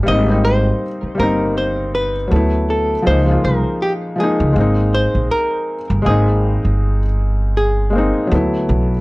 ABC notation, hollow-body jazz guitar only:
X:1
M:4/4
L:1/8
Q:"Swing 16ths" 1/4=80
K:Ab
V:1 name="Hollow-body jazz guitar"
e c2 B c _c2 =A | c B G A2 c B2 | A4 A3 z |]